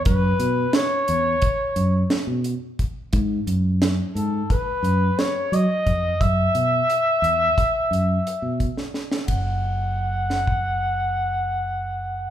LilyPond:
<<
  \new Staff \with { instrumentName = "Trumpet" } { \time 9/8 \key e \major \tempo 4. = 59 b'4 cis''2 r4. | r4. a'8 b'4 cis''8 dis''4 | e''2.~ e''8 r4 | fis''1~ fis''8 | }
  \new Staff \with { instrumentName = "Fingered electric bass" } { \clef bass \time 9/8 \key e \major fis,8 b,8 r8 e,8 r8 fis,8 r16 b,8 r8. | gis,8 fis,4 gis,8 r8 fis,8 r8 fis16 r16 eis,8 | fis,8 b,8 r8 e,8 r8 fis,8 r16 b,8 r8. | fis,,1~ fis,,8 | }
  \new DrumStaff \with { instrumentName = "Drums" } \drummode { \time 9/8 <hh bd>8 hh8 <hh sn>8 hh8 <hh bd>8 hh8 <hh sn>8 hh8 <hh bd>8 | <hh bd>8 hh8 <hh sn>8 hh8 <hh bd>8 hh8 <hh sn>8 hh8 <hh bd>8 | <hh bd>8 hh8 hh8 hh8 <hh bd>8 hh8 hh8 <hh bd>16 sn16 sn16 sn16 | <bd cymr>4 r8 sn16 bd16 r4 r4. | }
>>